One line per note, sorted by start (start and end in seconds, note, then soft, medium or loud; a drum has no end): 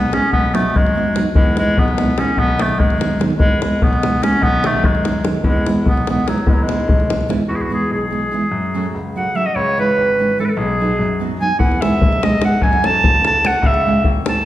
0.00 0.16 B3 loud
0.11 0.23 G#3 medium
0.11 0.24 B3 medium
0.11 0.32 C#4 loud
0.11 0.24 E4 medium
0.11 0.24 G#4 medium
0.11 davul high medium
0.23 davul high soft
0.33 0.75 B1 medium
0.33 0.56 B3 loud
0.33 davul low medium
0.53 0.65 F#3 medium
0.53 0.78 A3 medium
0.53 0.66 B3 medium
0.53 0.66 D#4 medium
0.53 0.66 F#4 medium
0.53 davul high medium
0.76 1.12 F#2 medium
0.76 1.22 G#3 loud
0.76 davul low medium
0.87 davul high soft
0.95 1.06 F#3 medium
0.95 1.07 B3 soft
0.95 1.07 D#4 medium
0.95 1.07 F#4 medium
1.15 1.26 F#3 medium
1.15 1.26 B3 medium
1.15 1.27 D#4 medium
1.15 1.27 F#4 medium
1.15 davul high medium
1.35 1.78 E2 medium
1.35 1.56 G#3 medium
1.35 davul low loud
1.57 1.68 E3 medium
1.57 1.68 G#3 medium
1.57 1.80 G#3 loud
1.57 1.69 B3 medium
1.57 1.69 E4 medium
1.57 davul high medium
1.77 2.13 B1 medium
1.77 2.21 B3 loud
1.77 davul low medium
1.88 davul high soft
1.98 2.09 E3 medium
1.98 2.10 G#3 medium
1.98 2.10 B3 medium
1.98 2.10 E4 medium
1.98 davul high medium
2.18 2.29 E3 medium
2.18 2.29 G#3 medium
2.18 2.30 B3 medium
2.18 2.40 C#4 medium
2.18 2.30 E4 medium
2.18 davul high medium
2.28 davul high soft
2.37 2.80 B1 medium
2.37 2.62 B3 loud
2.37 davul low medium
2.48 davul high soft
2.58 2.70 D#3 medium
2.58 2.70 F#3 medium
2.58 2.81 A3 loud
2.58 2.70 B3 medium
2.58 2.71 D#4 medium
2.58 davul high medium
2.69 davul high soft
2.80 3.16 F#2 medium
2.80 3.25 G#3 medium
2.80 davul low medium
2.90 davul high soft
2.98 3.11 D#3 medium
2.98 3.11 F#3 medium
2.98 3.11 B3 medium
2.98 3.11 D#4 medium
2.98 davul high medium
3.19 3.31 D#3 medium
3.19 3.31 F#3 medium
3.19 3.31 B3 medium
3.19 3.31 D#4 medium
3.19 davul high medium
3.30 davul high soft
3.38 3.82 E2 medium
3.38 3.60 G#3 loud
3.38 davul low medium
3.61 3.72 E3 medium
3.61 3.72 G#3 soft
3.61 3.84 G#3 medium
3.61 3.73 B3 medium
3.61 3.73 E4 medium
3.61 davul high medium
3.82 4.18 B1 medium
3.82 4.25 B3 medium
3.82 davul low medium
3.93 davul high soft
4.02 4.14 E3 medium
4.02 4.14 G#3 soft
4.02 4.14 B3 soft
4.02 4.14 E4 medium
4.02 davul high medium
4.20 4.32 E3 medium
4.20 4.33 G#3 medium
4.20 4.33 B3 medium
4.20 4.44 C#4 loud
4.20 4.34 E4 medium
4.20 davul high medium
4.33 davul high soft
4.41 4.84 B1 loud
4.41 4.67 B3 loud
4.41 davul low medium
4.63 4.75 D#3 medium
4.63 4.75 F#3 medium
4.63 4.87 A3 loud
4.63 4.75 B3 soft
4.63 4.76 D#4 medium
4.63 davul high medium
4.84 5.20 F#2 medium
4.84 5.31 G#3 medium
4.84 davul low medium
4.95 davul high soft
5.04 5.16 D#3 medium
5.04 5.16 F#3 medium
5.04 5.16 B3 soft
5.04 5.17 D#4 medium
5.04 davul high medium
5.24 5.35 D#3 medium
5.24 5.36 F#3 medium
5.24 5.36 B3 medium
5.24 5.36 D#4 medium
5.24 davul high medium
5.35 davul high soft
5.44 5.87 E2 loud
5.44 davul low medium
5.48 5.67 G#3 medium
5.66 5.78 E3 medium
5.66 5.78 G#3 medium
5.66 5.79 B3 medium
5.66 5.79 E4 medium
5.66 davul high medium
5.86 6.22 B1 medium
5.86 6.08 B3 medium
5.86 davul low medium
5.97 davul high soft
6.07 6.19 E3 medium
6.07 6.19 G#3 soft
6.07 6.20 B3 medium
6.07 6.29 B3 medium
6.07 6.20 E4 medium
6.07 davul high medium
6.28 6.38 E3 medium
6.28 6.50 F#3 medium
6.28 6.39 G#3 medium
6.28 6.39 B3 medium
6.28 6.39 E4 medium
6.28 davul high medium
6.38 davul high soft
6.46 6.89 E2 medium
6.46 6.55 G#3 medium
6.46 davul low loud
6.53 6.64 F#3 medium
6.63 7.31 G#3 medium
6.67 6.80 E3 medium
6.67 6.80 G#3 medium
6.67 6.80 B3 medium
6.67 6.80 E4 medium
6.67 davul high medium
6.80 davul high soft
6.88 7.25 B1 medium
6.88 davul low medium
7.00 davul high soft
7.10 7.21 E3 medium
7.10 7.21 G#3 soft
7.10 7.22 B3 medium
7.10 7.22 E4 medium
7.10 davul high medium
7.21 davul high soft
7.29 7.40 E3 medium
7.29 7.41 G#3 medium
7.29 7.41 B3 medium
7.29 7.41 E4 medium
7.29 davul high medium
7.49 7.92 E2 medium
7.49 7.57 F#4 medium
7.56 7.63 G#4 medium
7.62 7.72 F#4 medium
7.70 7.82 E3 medium
7.70 7.82 G#3 medium
7.70 7.83 B3 soft
7.70 7.83 E4 medium
7.70 7.92 G#4 medium
7.91 8.27 B1 medium
7.91 8.91 G#4 medium
8.10 8.23 E3 medium
8.10 8.23 G#3 soft
8.10 8.23 B3 soft
8.10 8.24 E4 medium
8.32 8.43 E3 medium
8.32 8.44 G#3 medium
8.32 8.44 B3 medium
8.32 8.44 E4 medium
8.52 8.94 F#2 medium
8.74 8.85 F#3 medium
8.74 8.86 A3 medium
8.74 8.86 C#4 medium
8.74 8.86 F#4 medium
8.94 9.31 C#2 medium
9.16 9.27 F#3 soft
9.16 9.27 A3 medium
9.16 9.27 C#4 medium
9.16 9.27 F#4 medium
9.16 9.37 F#5 medium
9.35 9.46 F#3 medium
9.35 9.46 A3 medium
9.35 9.47 C#4 medium
9.35 9.47 F#4 medium
9.35 9.47 E5 loud
9.46 9.57 D#5 medium
9.55 9.97 C#2 medium
9.55 9.77 C#5 loud
9.78 9.89 E3 medium
9.78 9.89 G#3 medium
9.78 9.89 C#4 medium
9.78 9.89 E4 medium
9.78 10.35 B4 loud
9.98 10.34 G#1 medium
10.19 10.29 E3 medium
10.19 10.30 G#3 medium
10.19 10.30 C#4 medium
10.19 10.31 E4 medium
10.39 10.49 E3 medium
10.39 10.49 G#3 medium
10.39 10.49 C#4 medium
10.39 10.50 E4 medium
10.39 10.46 A4 medium
10.45 10.50 B4 medium
10.49 10.52 A4 medium
10.49 10.60 A4 medium
10.57 10.99 B1 loud
10.57 11.21 G#4 medium
10.80 10.91 F#3 medium
10.80 10.91 B3 soft
10.80 10.92 D#4 medium
10.80 10.92 F#4 medium
10.99 11.36 F#2 medium
11.20 11.31 F#3 medium
11.20 11.31 B3 medium
11.20 11.32 D#4 medium
11.20 11.32 F#4 medium
11.41 11.51 F#3 medium
11.41 11.52 B3 medium
11.41 11.52 D#4 medium
11.41 11.52 F#4 medium
11.41 11.59 G#5 loud
11.59 12.01 E2 medium
11.59 11.83 F#5 medium
11.59 davul low medium
11.72 davul high soft
11.81 11.93 G#3 medium
11.81 11.93 B3 medium
11.81 11.94 E4 medium
11.81 11.94 G#4 medium
11.81 12.25 E5 loud
11.81 davul high medium
12.01 12.38 B1 medium
12.01 davul low loud
12.13 davul high soft
12.22 12.33 G#3 medium
12.22 12.34 B3 soft
12.22 12.34 E4 medium
12.22 12.34 G#4 medium
12.22 12.43 D#5 medium
12.22 davul high medium
12.41 12.53 G#3 medium
12.41 12.53 B3 medium
12.41 12.53 E4 medium
12.41 12.54 G#4 medium
12.41 davul high medium
12.45 12.62 F#5 loud
12.62 13.04 F#2 loud
12.62 12.87 G#5 loud
12.62 davul low medium
12.73 davul high soft
12.83 12.95 A3 medium
12.83 12.95 C#4 medium
12.83 12.96 F#4 medium
12.83 12.96 A4 medium
12.83 13.26 A5 loud
12.83 davul high medium
13.03 13.40 C#2 medium
13.03 davul low loud
13.15 davul high soft
13.25 13.36 A3 medium
13.25 13.36 C#4 medium
13.25 13.36 F#4 medium
13.25 13.37 A4 medium
13.25 13.48 A5 loud
13.25 davul high medium
13.44 13.55 A3 medium
13.44 13.56 C#4 medium
13.44 13.56 F#4 medium
13.44 13.56 A4 medium
13.44 13.68 F#5 loud
13.44 davul high medium
13.62 14.05 C#2 loud
13.62 davul low medium
13.66 14.07 E5 loud
13.74 davul high soft
13.86 13.97 G#3 medium
13.86 13.98 C#4 medium
13.86 13.98 E4 medium
13.86 13.98 G#4 medium
14.04 14.42 G#1 medium
14.04 davul low medium
14.25 14.37 G#3 medium
14.25 14.37 C#4 medium
14.25 14.37 E4 medium
14.25 14.38 G#4 medium
14.25 davul high medium
14.29 14.45 A5 medium